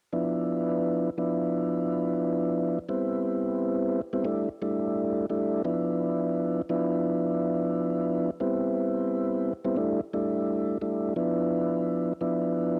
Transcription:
0.13 F3 B3 D4 E4
1.18 F3 B3 D4 E4
2.89 G3 B3 C4 E4
4.13 G3 B3 C4 E4
4.25 G3 A3 D4 E4
4.62 G3 A3 D4 E4
5.30 G3 A3 D4 E4
5.64 F3 B3 D4 E4
6.69 F3 B3 D4 E4
8.40 G3 B3 C4 E4
9.65 G3 B3 C4 E4
9.76 G3 A3 D4 E4
10.13 G3 A3 D4 E4
10.81 G3 A3 D4 E4
11.16 F3 B3 D4 E4
12.21 F3 B3 D4 E4

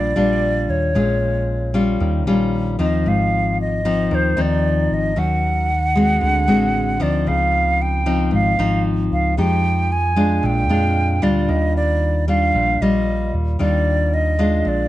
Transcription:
Already playing: A#1 A#2 G3 D4 F4 D5
0.16 A#1 G3 D4 F4
0.69 D#2 C#5
0.95 A#1 A#2 G#3 C#4 F4
1.74 G3 C#4 F4
2.00 D#2 D#3
2.27 A#1 G3 C#4 F4
2.79 D#2 F3 C4 D#4 D#5
3.06 G#1 G#2 F5
3.61 D#5
3.85 F3 C4 D#4
4.11 D#2 D#3 C5
4.37 D#2 F3 C4 D#4
4.41 D5
4.91 G#1 D#5
5.16 D#2 D#3 F#3 C#4 F#5
5.95 G#3 C4 F#4
6.21 D2 D3
6.48 A1 G#3 C4 F#4
7.00 D2 F3 C4 D#4 D5
7.27 C#2 C#3 F5
7.82 G5
8.06 F3 C4 D#4
8.31 G#1 G#2 F5
8.59 G#1 F3 C4 D#4
9.11 C#2 F5
9.37 F2 F3 G#3 D#4 G4 G5
9.92 G#5
10.16 G#3 D4 F4
10.43 A#1 A#2 G5
10.69 F2 G#3 D4 F4
11.22 D2 G3 D4 F4 D5
11.48 D#2 D#3 D#5
11.77 D5
12.28 G3 D4 F4 F5
12.54 A#1 A#2
12.81 A#1 G3 F4 D#5
13.34 D#2
13.59 D#2 D#3 G3 D4 F4 D5
14.14 D#5
14.39 G#3 D4 F4
14.65 A#1 A#2 D5

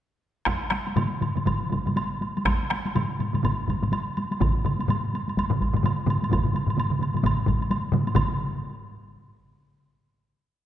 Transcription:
0.45 taiko rim, taiko, taiko high, high woodblock
0.70 taiko rim, taiko high, high woodblock
0.86 taiko high, high woodblock
0.96 taiko low-mid, taiko mid, taiko high, high woodblock
1.21 taiko low-mid, taiko mid, taiko high, high woodblock
1.35 taiko low-mid, taiko mid, taiko high, high woodblock
1.45 taiko, taiko low-mid, taiko mid, taiko high, high woodblock
1.70 taiko, taiko low-mid, taiko mid, taiko high, high woodblock
1.85 taiko low-mid, taiko mid, taiko high, high woodblock
1.97 taiko high, high woodblock
2.22 taiko high, high woodblock
2.37 taiko high, high woodblock
2.45 taiko rim, taiko, taiko high, high woodblock
2.70 taiko rim, taiko high, high woodblock
2.85 taiko high, high woodblock
2.95 taiko low-mid, taiko mid, taiko high, high woodblock
3.19 taiko low-mid, taiko mid, taiko high, high woodblock
3.34 taiko low-mid, taiko mid, taiko high, high woodblock
3.44 taiko, taiko low-mid, taiko mid, taiko high, high woodblock
3.68 taiko, taiko low-mid, taiko mid, taiko high, high woodblock
3.82 taiko low-mid, taiko mid, taiko high, high woodblock
3.93 taiko high, high woodblock
4.17 taiko high, high woodblock
4.31 taiko high, high woodblock
4.40 taiko, taiko low-mid, taiko mid, taiko high, high woodblock
4.65 taiko low-mid, taiko mid, taiko high, high woodblock
4.79 taiko high, high woodblock
4.88 taiko low-mid, taiko mid, taiko high, high woodblock
5.14 taiko high, high woodblock
5.28 taiko high, high woodblock
5.37 taiko, taiko high, high woodblock
5.50 taiko low-mid, taiko mid
5.61 taiko, taiko high, high woodblock
5.74 taiko low-mid, taiko mid, taiko high, high woodblock
5.83 taiko low-mid, taiko mid, taiko high, high woodblock
6.06 taiko low-mid, taiko mid, taiko high, high woodblock
6.22 taiko high, high woodblock
6.29 taiko, taiko low-mid, taiko mid, taiko high, high woodblock
6.44 taiko low-mid, taiko mid
6.53 taiko low-mid, taiko mid, taiko high, high woodblock
6.67 taiko low-mid, taiko mid, taiko high, high woodblock
6.77 taiko low-mid, taiko mid, taiko high, high woodblock
6.90 taiko low-mid, taiko mid
6.99 taiko low-mid, taiko mid, taiko high, high woodblock
7.14 taiko low-mid, taiko mid, taiko high, high woodblock
7.23 taiko, taiko low-mid, taiko mid, taiko high, high woodblock
7.46 taiko, taiko low-mid, taiko mid, taiko high, high woodblock
7.61 taiko high, high woodblock
7.71 taiko high, high woodblock
7.92 taiko low-mid, taiko mid, taiko high
8.07 taiko high, high woodblock
8.15 taiko, taiko low-mid, taiko mid, taiko high, high woodblock

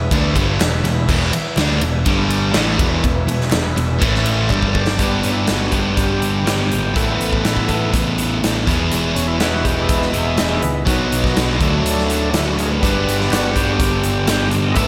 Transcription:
Already playing: B3 E4 G#4 E5
0.11 D2 D3 A3 D4, kick, ride
0.36 G1 G2 D3 G3, kick, ride
0.60 E1 E2 B2, snare, clap, ride
0.84 E1 E2 B2, snare, ride
1.08 E1 E2 B2 E3, kick, crash
1.33 muted distorted electric guitar stroke, muted picked electric bass stroke, ride
1.56 D2 D3 A3 D4, snare, clap, ride
1.81 E1 E2 B2, ride
2.05 G1 G2 D3 G3 D4 G4 D5, kick, ride
2.30 ride
2.52 A1 A2 E3 A3 B3, snare, clap, ride
2.56 E4 G#4 E5
2.78 E1 E2 B2 E3, kick, ride
3.03 E1 E2 B2, kick, ride
3.28 E1 E2 B2, ride
3.41 snare
3.51 E1 E2 B2, snare, clap, ride
3.77 E1 E2 B2, ride
4.00 A1 A2 E3 A3 E4 A4 E5, kick, ride
4.15 snare
4.26 ride
4.49 G1 G2 D3 G3 D4 G4 D5, kick, clap
4.63 kick
4.75 kick
4.87 snare
4.97 G1 G2 D3 G3 B3 D4 G4, kick, closed hi-hat
5.01 B4
5.22 G1 C#4, closed hi-hat
5.33 E4
5.47 G1 F#4, snare, closed hi-hat
5.71 G1 G3 B3 D4 G4 B4, kick, closed hi-hat
5.97 G1 G4, kick, closed hi-hat
6.22 G1, closed hi-hat
6.45 G1 G3 B3 D4 G4 B4, snare, closed hi-hat
6.72 G#1, closed hi-hat
6.93 A1 A2 E3 A3 B3 E4 A4, kick, closed hi-hat
7.18 A1, closed hi-hat
7.33 kick
7.45 A1, snare, closed hi-hat
7.57 kick
7.68 A3 B3 E4 A4, kick, closed hi-hat
7.72 B3 E4
7.94 A1, kick, closed hi-hat
8.18 closed hi-hat
8.41 A1 A3 B3 E4 A4, snare, closed hi-hat
8.66 E1 E2 B2 E3 B3 E4 G#4, kick, snare, closed hi-hat
8.92 E1, closed hi-hat
9.15 E1 C#4, closed hi-hat
9.28 E4
9.39 E1 E3 G#3 B3 E4 F#4 G#4, snare, closed hi-hat
9.65 E1 G4, kick, closed hi-hat
9.89 E1 G#3 E4, kick, closed hi-hat
10.02 snare
10.13 E1 E3 B3 E4 G#4, closed hi-hat
10.38 E1, snare, closed hi-hat
10.62 C#2 G#3 B3 E4, closed hi-hat
10.85 B1 B2 F#3 B3 D#4 F#4, kick, closed hi-hat
11.12 B1, closed hi-hat
11.24 kick, snare
11.37 B1, snare, closed hi-hat
11.60 D2 D3 F#3 A3 D4 F#4, kick, closed hi-hat
11.85 D2, closed hi-hat
11.98 snare
12.10 closed hi-hat
12.33 D2 D3 F#3 A3 E4, snare, closed hi-hat
12.37 D4 F#4
12.45 F#4
12.57 D2 G#4, closed hi-hat
12.65 A#4
12.71 B4
12.80 G1 G2 D3 G3 B3 D4, kick, closed hi-hat
12.85 D4 G4
13.08 G1, closed hi-hat
13.20 G4, snare
13.31 G1 F#4, snare, clap, closed hi-hat
13.54 G1 D4 G4, kick, closed hi-hat
13.58 G3 B3
13.80 G1, kick, closed hi-hat
14.04 G1, closed hi-hat
14.27 G1 G3 B3 D4 G4, snare, clap, closed hi-hat
14.51 G1, closed hi-hat
14.72 A3 B3 D#5 E5, closed hi-hat
14.76 A1 A2 E3 B3 E4 A4, kick

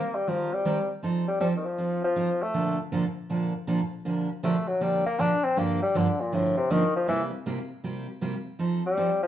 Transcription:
Already playing: A#3
0.15 G3
0.27 D#3 F3 G3 C4 G4 A#4
0.53 G3
0.65 D#3 G3 C4 G4 A#4
1.03 F3 C4 D#4 A4
1.28 G3
1.40 F3 G3 C4 D#4 A4
1.57 D#3
1.66 F3
1.78 F3 C4 D#4 A4
2.04 F3
2.16 F3 C4 D#4 A4
2.42 A3
2.54 A#2 D3 F3 A#3 D4 A4
2.92 A#2 D3 F3 A#3 D4 A4
3.30 A#2 D3 F3 A#3 D4 A4
3.67 A#2 D3 F3 A#3 D4 A4
4.05 A#2 D3 F3 A#3 D4 G4
4.43 A#2 D3 F3 A3 A#3 D4 G4
4.68 F#3
4.80 A#2 D3 F3 G3 A#3 D4 G4
5.06 A#3
5.19 A#2 D3 F3 A#3 D4 G4
5.44 C4
5.56 G2 D3 F3 A#3 D4 G4
5.82 G3
5.94 G2 D3 F3 A#3 D4 G4
6.21 A#2
6.32 G2 A2 D3 F3 A#3 D4 G4
6.57 C3
6.70 G2 D3 D#3 F3 A#3 D4 G4
6.96 F3
7.08 C3 E3 G3 A#3 E4 G4
7.46 C3 G3 A#3 E4 G4
7.84 C3 G3 A#3 E4 G4
8.21 C3 G3 A#3 E4 G4
8.59 F3 C4 D#4 A4
8.86 G3
8.97 F3 C4 D#4 A4
9.23 F3

